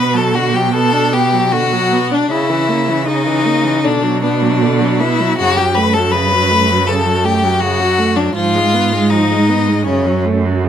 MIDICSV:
0, 0, Header, 1, 5, 480
1, 0, Start_track
1, 0, Key_signature, 2, "minor"
1, 0, Tempo, 787402
1, 1408, Time_signature, 4, 2, 24, 8
1, 1409, Tempo, 770218
1, 3329, Tempo, 748130
1, 6727, End_track
2, 0, Start_track
2, 0, Title_t, "Violin"
2, 0, Program_c, 0, 40
2, 0, Note_on_c, 0, 83, 79
2, 81, Note_on_c, 0, 81, 81
2, 90, Note_off_c, 0, 83, 0
2, 207, Note_on_c, 0, 78, 76
2, 216, Note_off_c, 0, 81, 0
2, 325, Note_on_c, 0, 79, 75
2, 334, Note_off_c, 0, 78, 0
2, 447, Note_on_c, 0, 81, 89
2, 457, Note_off_c, 0, 79, 0
2, 685, Note_on_c, 0, 79, 74
2, 694, Note_off_c, 0, 81, 0
2, 929, Note_on_c, 0, 78, 80
2, 938, Note_off_c, 0, 79, 0
2, 1286, Note_on_c, 0, 74, 73
2, 1296, Note_off_c, 0, 78, 0
2, 1396, Note_off_c, 0, 74, 0
2, 1399, Note_on_c, 0, 76, 80
2, 1875, Note_on_c, 0, 75, 87
2, 1885, Note_off_c, 0, 76, 0
2, 2365, Note_on_c, 0, 74, 77
2, 2374, Note_off_c, 0, 75, 0
2, 2599, Note_off_c, 0, 74, 0
2, 2603, Note_on_c, 0, 74, 79
2, 3085, Note_on_c, 0, 76, 78
2, 3094, Note_off_c, 0, 74, 0
2, 3320, Note_off_c, 0, 76, 0
2, 3323, Note_on_c, 0, 78, 92
2, 3445, Note_on_c, 0, 79, 78
2, 3455, Note_off_c, 0, 78, 0
2, 3558, Note_on_c, 0, 83, 81
2, 3567, Note_off_c, 0, 79, 0
2, 3679, Note_on_c, 0, 81, 77
2, 3689, Note_off_c, 0, 83, 0
2, 3792, Note_on_c, 0, 83, 98
2, 3801, Note_off_c, 0, 81, 0
2, 4279, Note_on_c, 0, 81, 80
2, 4289, Note_off_c, 0, 83, 0
2, 4520, Note_on_c, 0, 79, 78
2, 4529, Note_off_c, 0, 81, 0
2, 4743, Note_on_c, 0, 78, 85
2, 4753, Note_off_c, 0, 79, 0
2, 5108, Note_on_c, 0, 74, 72
2, 5118, Note_off_c, 0, 78, 0
2, 5220, Note_off_c, 0, 74, 0
2, 5224, Note_on_c, 0, 77, 94
2, 5706, Note_on_c, 0, 75, 82
2, 5716, Note_off_c, 0, 77, 0
2, 6185, Note_on_c, 0, 73, 68
2, 6194, Note_off_c, 0, 75, 0
2, 6436, Note_off_c, 0, 73, 0
2, 6727, End_track
3, 0, Start_track
3, 0, Title_t, "Violin"
3, 0, Program_c, 1, 40
3, 0, Note_on_c, 1, 71, 88
3, 101, Note_on_c, 1, 69, 81
3, 110, Note_off_c, 1, 71, 0
3, 214, Note_on_c, 1, 66, 92
3, 224, Note_off_c, 1, 69, 0
3, 341, Note_on_c, 1, 67, 82
3, 351, Note_off_c, 1, 66, 0
3, 446, Note_off_c, 1, 67, 0
3, 449, Note_on_c, 1, 69, 97
3, 690, Note_on_c, 1, 67, 88
3, 699, Note_off_c, 1, 69, 0
3, 924, Note_on_c, 1, 66, 97
3, 934, Note_off_c, 1, 67, 0
3, 1290, Note_off_c, 1, 66, 0
3, 1300, Note_on_c, 1, 62, 75
3, 1410, Note_on_c, 1, 64, 92
3, 1419, Note_off_c, 1, 62, 0
3, 1877, Note_off_c, 1, 64, 0
3, 1881, Note_on_c, 1, 63, 95
3, 2365, Note_on_c, 1, 62, 84
3, 2374, Note_off_c, 1, 63, 0
3, 2595, Note_off_c, 1, 62, 0
3, 2599, Note_on_c, 1, 62, 78
3, 3087, Note_on_c, 1, 64, 91
3, 3096, Note_off_c, 1, 62, 0
3, 3315, Note_off_c, 1, 64, 0
3, 3319, Note_on_c, 1, 66, 110
3, 3439, Note_on_c, 1, 67, 95
3, 3449, Note_off_c, 1, 66, 0
3, 3557, Note_on_c, 1, 71, 92
3, 3567, Note_off_c, 1, 67, 0
3, 3677, Note_on_c, 1, 69, 91
3, 3686, Note_off_c, 1, 71, 0
3, 3794, Note_on_c, 1, 71, 102
3, 3803, Note_off_c, 1, 69, 0
3, 4276, Note_on_c, 1, 69, 84
3, 4286, Note_off_c, 1, 71, 0
3, 4515, Note_on_c, 1, 67, 86
3, 4524, Note_off_c, 1, 69, 0
3, 4748, Note_on_c, 1, 66, 98
3, 4757, Note_off_c, 1, 67, 0
3, 5104, Note_on_c, 1, 62, 81
3, 5114, Note_off_c, 1, 66, 0
3, 5223, Note_off_c, 1, 62, 0
3, 5226, Note_on_c, 1, 65, 99
3, 5707, Note_on_c, 1, 63, 91
3, 5716, Note_off_c, 1, 65, 0
3, 6183, Note_off_c, 1, 63, 0
3, 6187, Note_on_c, 1, 61, 73
3, 6432, Note_off_c, 1, 61, 0
3, 6727, End_track
4, 0, Start_track
4, 0, Title_t, "Viola"
4, 0, Program_c, 2, 41
4, 0, Note_on_c, 2, 59, 63
4, 86, Note_on_c, 2, 54, 57
4, 95, Note_off_c, 2, 59, 0
4, 206, Note_on_c, 2, 50, 57
4, 215, Note_off_c, 2, 54, 0
4, 324, Note_on_c, 2, 54, 65
4, 334, Note_off_c, 2, 50, 0
4, 441, Note_off_c, 2, 54, 0
4, 445, Note_on_c, 2, 59, 62
4, 562, Note_on_c, 2, 62, 63
4, 571, Note_off_c, 2, 59, 0
4, 688, Note_on_c, 2, 59, 57
4, 697, Note_off_c, 2, 62, 0
4, 809, Note_on_c, 2, 54, 59
4, 818, Note_off_c, 2, 59, 0
4, 930, Note_on_c, 2, 50, 66
4, 939, Note_off_c, 2, 54, 0
4, 1051, Note_on_c, 2, 54, 66
4, 1060, Note_off_c, 2, 50, 0
4, 1170, Note_on_c, 2, 59, 65
4, 1179, Note_off_c, 2, 54, 0
4, 1291, Note_on_c, 2, 62, 61
4, 1300, Note_off_c, 2, 59, 0
4, 1404, Note_off_c, 2, 62, 0
4, 1407, Note_on_c, 2, 49, 68
4, 1524, Note_on_c, 2, 52, 61
4, 1533, Note_off_c, 2, 49, 0
4, 1644, Note_on_c, 2, 58, 57
4, 1653, Note_off_c, 2, 52, 0
4, 1766, Note_on_c, 2, 52, 62
4, 1775, Note_off_c, 2, 58, 0
4, 1887, Note_on_c, 2, 49, 57
4, 1896, Note_off_c, 2, 52, 0
4, 2002, Note_on_c, 2, 52, 63
4, 2011, Note_off_c, 2, 49, 0
4, 2123, Note_on_c, 2, 58, 54
4, 2133, Note_off_c, 2, 52, 0
4, 2238, Note_on_c, 2, 52, 64
4, 2248, Note_off_c, 2, 58, 0
4, 2356, Note_off_c, 2, 52, 0
4, 2359, Note_on_c, 2, 50, 62
4, 2480, Note_on_c, 2, 54, 61
4, 2489, Note_off_c, 2, 50, 0
4, 2603, Note_on_c, 2, 59, 56
4, 2612, Note_off_c, 2, 54, 0
4, 2725, Note_on_c, 2, 54, 59
4, 2734, Note_off_c, 2, 59, 0
4, 2846, Note_on_c, 2, 50, 65
4, 2855, Note_off_c, 2, 54, 0
4, 2963, Note_on_c, 2, 54, 63
4, 2973, Note_off_c, 2, 50, 0
4, 3086, Note_on_c, 2, 59, 63
4, 3095, Note_off_c, 2, 54, 0
4, 3207, Note_on_c, 2, 54, 63
4, 3216, Note_off_c, 2, 59, 0
4, 3323, Note_off_c, 2, 54, 0
4, 3327, Note_on_c, 2, 49, 67
4, 3449, Note_on_c, 2, 54, 62
4, 3459, Note_off_c, 2, 49, 0
4, 3565, Note_on_c, 2, 57, 65
4, 3575, Note_off_c, 2, 54, 0
4, 3687, Note_on_c, 2, 54, 63
4, 3696, Note_off_c, 2, 57, 0
4, 3805, Note_on_c, 2, 49, 59
4, 3814, Note_off_c, 2, 54, 0
4, 3922, Note_on_c, 2, 54, 67
4, 3931, Note_off_c, 2, 49, 0
4, 4045, Note_on_c, 2, 57, 58
4, 4055, Note_off_c, 2, 54, 0
4, 4166, Note_on_c, 2, 54, 66
4, 4175, Note_off_c, 2, 57, 0
4, 4283, Note_off_c, 2, 54, 0
4, 4287, Note_on_c, 2, 49, 61
4, 4399, Note_on_c, 2, 54, 61
4, 4409, Note_off_c, 2, 49, 0
4, 4516, Note_on_c, 2, 57, 62
4, 4525, Note_off_c, 2, 54, 0
4, 4637, Note_on_c, 2, 54, 58
4, 4646, Note_off_c, 2, 57, 0
4, 4755, Note_on_c, 2, 49, 68
4, 4764, Note_off_c, 2, 54, 0
4, 4871, Note_on_c, 2, 54, 69
4, 4881, Note_off_c, 2, 49, 0
4, 4990, Note_on_c, 2, 57, 64
4, 5000, Note_off_c, 2, 54, 0
4, 5106, Note_on_c, 2, 54, 58
4, 5115, Note_off_c, 2, 57, 0
4, 5224, Note_off_c, 2, 54, 0
4, 5228, Note_on_c, 2, 53, 67
4, 5355, Note_on_c, 2, 56, 62
4, 5365, Note_off_c, 2, 53, 0
4, 5476, Note_on_c, 2, 59, 60
4, 5486, Note_off_c, 2, 56, 0
4, 5596, Note_on_c, 2, 56, 63
4, 5606, Note_off_c, 2, 59, 0
4, 5722, Note_on_c, 2, 53, 60
4, 5732, Note_off_c, 2, 56, 0
4, 5842, Note_on_c, 2, 56, 63
4, 5852, Note_off_c, 2, 53, 0
4, 5958, Note_on_c, 2, 59, 56
4, 5968, Note_off_c, 2, 56, 0
4, 6082, Note_on_c, 2, 56, 62
4, 6091, Note_off_c, 2, 59, 0
4, 6198, Note_off_c, 2, 56, 0
4, 6201, Note_on_c, 2, 49, 62
4, 6322, Note_on_c, 2, 54, 58
4, 6332, Note_off_c, 2, 49, 0
4, 6444, Note_on_c, 2, 57, 59
4, 6454, Note_off_c, 2, 54, 0
4, 6569, Note_on_c, 2, 54, 58
4, 6579, Note_off_c, 2, 57, 0
4, 6694, Note_on_c, 2, 49, 65
4, 6704, Note_off_c, 2, 54, 0
4, 6727, Note_off_c, 2, 49, 0
4, 6727, End_track
5, 0, Start_track
5, 0, Title_t, "Cello"
5, 0, Program_c, 3, 42
5, 0, Note_on_c, 3, 47, 68
5, 1383, Note_off_c, 3, 47, 0
5, 1411, Note_on_c, 3, 49, 66
5, 2372, Note_on_c, 3, 47, 76
5, 2381, Note_off_c, 3, 49, 0
5, 3327, Note_on_c, 3, 42, 68
5, 3337, Note_off_c, 3, 47, 0
5, 5231, Note_off_c, 3, 42, 0
5, 5235, Note_on_c, 3, 44, 72
5, 6192, Note_on_c, 3, 42, 77
5, 6201, Note_off_c, 3, 44, 0
5, 6727, Note_off_c, 3, 42, 0
5, 6727, End_track
0, 0, End_of_file